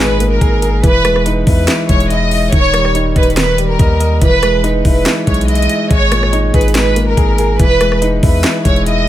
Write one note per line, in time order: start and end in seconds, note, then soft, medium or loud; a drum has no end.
0.00 0.39 G#1 loud
0.00 0.41 A#2 medium
0.00 0.86 G#3 loud
0.00 0.62 D#4 loud
0.00 0.40 G#4 medium
0.00 0.29 B4 medium
0.00 impact medium
0.20 0.84 A#3 medium
0.20 closed hi-hat medium
0.31 0.80 A#4 medium
0.41 0.82 G#1 loud
0.41 0.61 G#4 medium
0.41 kick loud
0.41 closed hi-hat medium
0.62 0.84 G#4 medium
0.62 closed hi-hat medium
0.83 1.44 E1 loud
0.83 1.66 E3 medium
0.83 1.23 B4 loud
0.83 kick loud
0.83 closed hi-hat medium
1.05 1.88 G#3 medium
1.05 cross-stick loud
1.05 closed hi-hat medium
1.16 cross-stick medium
1.26 2.31 D#4 medium
1.26 closed hi-hat medium
1.47 1.67 E2 loud
1.47 2.09 E4 medium
1.47 1.87 B4 medium
1.47 kick medium
1.47 open hi-hat medium
1.68 2.52 E3 medium
1.68 snare loud
1.68 clap medium
1.68 closed hi-hat medium
1.89 2.50 E1 loud
1.89 2.53 G#3 medium
1.89 2.05 C#5 medium
1.89 kick medium
1.89 closed hi-hat medium
2.00 closed hi-hat soft
2.10 2.30 E4 medium
2.10 2.50 D#5 medium
2.10 closed hi-hat medium
2.31 2.53 E4 medium
2.31 open hi-hat soft
2.52 3.13 D#1 loud
2.52 3.36 D#3 medium
2.52 2.92 C#5 loud
2.52 kick loud
2.52 closed hi-hat medium
2.74 3.57 G3 medium
2.74 cross-stick loud
2.74 closed hi-hat medium
2.85 cross-stick medium
2.95 4.00 D#4 medium
2.95 closed hi-hat medium
3.16 3.77 D#1 loud
3.16 3.32 B4 medium
3.16 3.78 D#5 medium
3.16 kick medium
3.16 closed hi-hat medium
3.23 closed hi-hat medium
3.30 closed hi-hat medium
3.37 4.22 D#3 medium
3.37 3.67 B4 medium
3.37 snare loud
3.37 clap medium
3.37 closed hi-hat medium
3.58 4.22 G3 medium
3.58 closed hi-hat medium
3.70 4.19 A#4 medium
3.79 4.20 D#2 loud
3.79 3.99 D#5 medium
3.79 kick loud
3.79 closed hi-hat medium
4.00 4.22 D#5 medium
4.00 closed hi-hat medium
4.22 4.82 E1 loud
4.22 5.05 E3 medium
4.22 4.61 B4 loud
4.22 kick loud
4.22 closed hi-hat medium
4.43 5.26 G#3 medium
4.43 cross-stick loud
4.43 closed hi-hat medium
4.64 5.69 D#4 medium
4.64 closed hi-hat medium
4.85 5.05 E1 loud
4.85 5.47 E4 medium
4.85 5.25 B4 medium
4.85 kick loud
4.85 open hi-hat medium
5.06 5.91 E3 medium
5.06 snare loud
5.06 clap medium
5.06 closed hi-hat medium
5.27 5.68 B1 loud
5.27 5.89 G#3 medium
5.27 5.43 C#5 medium
5.27 kick medium
5.27 closed hi-hat medium
5.34 closed hi-hat medium
5.41 closed hi-hat medium
5.48 5.68 E4 medium
5.48 5.88 D#5 medium
5.48 closed hi-hat medium
5.55 closed hi-hat medium
5.62 closed hi-hat medium
5.69 5.91 E4 medium
5.69 closed hi-hat medium
5.91 6.51 G#1 loud
5.91 6.74 G#3 loud
5.91 6.30 C#5 loud
5.91 kick loud
5.91 closed hi-hat medium
6.12 7.17 A#2 medium
6.12 cross-stick loud
6.12 closed hi-hat medium
6.23 cross-stick medium
6.33 7.38 D#4 loud
6.33 closed hi-hat medium
6.54 7.15 G#1 loud
6.54 7.16 G#4 medium
6.54 6.70 B4 medium
6.54 kick loud
6.54 closed hi-hat medium
6.61 closed hi-hat medium
6.68 closed hi-hat medium
6.75 7.60 G#3 medium
6.75 7.05 B4 medium
6.75 snare loud
6.75 clap medium
6.75 closed hi-hat medium
6.96 7.60 A#3 medium
6.96 closed hi-hat medium
7.07 7.56 A#4 medium
7.17 7.58 G#1 loud
7.17 7.37 G#4 medium
7.17 kick loud
7.17 closed hi-hat medium
7.38 7.60 G#4 medium
7.38 closed hi-hat medium
7.59 8.20 E1 loud
7.59 8.42 E3 loud
7.59 7.99 B4 loud
7.59 kick loud
7.59 closed hi-hat medium
7.81 8.64 G#3 medium
7.81 cross-stick medium
7.81 closed hi-hat medium
7.92 cross-stick medium
8.02 9.07 D#4 medium
8.02 closed hi-hat medium
8.23 8.43 E2 loud
8.23 8.85 E4 medium
8.23 8.63 B4 medium
8.23 kick medium
8.23 open hi-hat medium
8.44 9.09 E3 medium
8.44 snare loud
8.44 clap medium
8.44 closed hi-hat medium
8.65 9.09 E1 loud
8.65 9.09 G#3 medium
8.65 8.81 C#5 medium
8.65 kick loud
8.65 closed hi-hat medium
8.76 closed hi-hat soft
8.86 9.06 E4 medium
8.86 9.09 D#5 medium
8.86 closed hi-hat medium